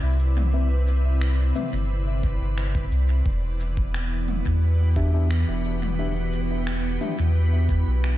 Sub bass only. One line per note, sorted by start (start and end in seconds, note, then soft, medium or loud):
0.03 1.52 C2 medium
1.73 2.38 G1 medium
2.41 2.89 G1 medium
2.92 3.22 C2 loud
3.26 4.42 E1 loud
4.46 5.45 E2 medium
5.48 6.98 E1 medium
7.19 7.84 E2 medium
7.87 8.18 B1 medium